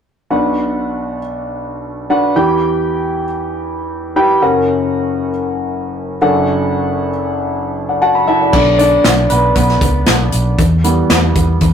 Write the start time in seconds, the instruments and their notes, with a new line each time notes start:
0.30 grand piano B1 B2 D4 F#4 B4 F#5
2.10 grand piano D4 F#4 B4 F#5
2.36 grand piano E2 E3 E4 G4 B4 G5
4.16 grand piano E4 G4 B4 G5
4.42 grand piano F#1 F#2 C#4 F#4 A#4 F#5
6.21 grand piano F#1 F#2 D4 F#4 A4 F#5
7.89 grand piano D5 F#5
8.02 grand piano F#4 F#5 A5
8.15 grand piano B5
8.28 grand piano E4 E5 F#5 A5
8.41 grand piano D5 F#5
8.53 fingered electric bass B1, grand piano D3 F#3 B3 D4 D5, kick, crash
8.79 grand piano D4 D5, closed hi-hat
9.04 fingered electric bass B1, snare, clap, closed hi-hat
9.30 fingered electric bass B1, grand piano B3 B4, closed hi-hat
9.55 fingered electric bass B1, grand piano B3 B4, kick, closed hi-hat
9.69 snare
9.81 fingered electric bass C#2, kick, closed hi-hat
10.06 fingered electric bass B1, snare, clap, closed hi-hat
10.32 fingered electric bass B1, closed hi-hat
10.58 fingered electric bass E2, kick, closed hi-hat
10.84 grand piano E3 G3 B3, closed hi-hat
11.10 fingered electric bass E2, snare, clap, closed hi-hat
11.36 fingered electric bass E2, kick, closed hi-hat
11.61 fingered electric bass E2, kick, closed hi-hat